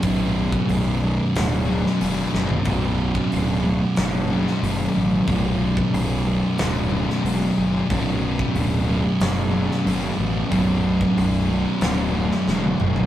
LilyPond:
<<
  \new Staff \with { instrumentName = "Distorted electric guitar" } { \clef bass \time 4/4 \key b \minor \tempo 4 = 92 <b,, fis, b,>2~ <b,, fis, b,>8 <b,, fis, b,>8 <b,, fis, b,>4 | <b,, fis, b,>2~ <b,, fis, b,>8 <b,, fis, b,>8 <b,, fis, b,>4 | <b,, fis, b,>2~ <b,, fis, b,>8 <b,, fis, b,>8 <b,, fis, b,>4 | <b,, fis, b,>2~ <b,, fis, b,>8 <b,, fis, b,>8 <b,, fis, b,>4 |
<b,, fis, b,>2~ <b,, fis, b,>8 <b,, fis, b,>8 <b,, fis, b,>4 | }
  \new Staff \with { instrumentName = "Distorted electric guitar" } { \clef bass \time 4/4 \key b \minor <b,, fis, b,>4. <b,, fis, b,>2~ <b,, fis, b,>8 | <b,, fis, b,>4. <b,, fis, b,>2~ <b,, fis, b,>8 | <b,, fis, b,>4. <b,, fis, b,>2~ <b,, fis, b,>8 | <b,, fis, b,>4. <b,, fis, b,>2~ <b,, fis, b,>8 |
<b,, fis, b,>4. <b,, fis, b,>2~ <b,, fis, b,>8 | }
  \new Staff \with { instrumentName = "Fingered electric bass" } { \clef bass \time 4/4 \key b \minor b,,,4 b,,,4 d,,4 e,,8 fis,,8 | b,,,4 d,,4 fis,,4 fis,,8 a,,8 | b,,,4 b,,,4 d,,4 e,,8 fis,,8 | b,,,4 d,,4 fis,,4 fis,,8 a,,8 |
b,,,4 b,,,4 d,,4 e,,8 fis,,8 | }
  \new DrumStaff \with { instrumentName = "Drums" } \drummode { \time 4/4 <hho bd>8. bd16 hho4 <hho sn>8. sn16 hho8 sn16 tomfh16 | <hho bd>8. bd16 hho4 <hho sn>8. sn16 hho4 | <hho bd>8. bd16 hho4 <hho sn>8. sn16 hho4 | <hho bd>8. bd16 hho4 <hho sn>8. sn16 hho4 |
<hho bd>8. bd16 hho4 <hho sn>8. sn16 sn16 tommh16 toml16 tomfh16 | }
>>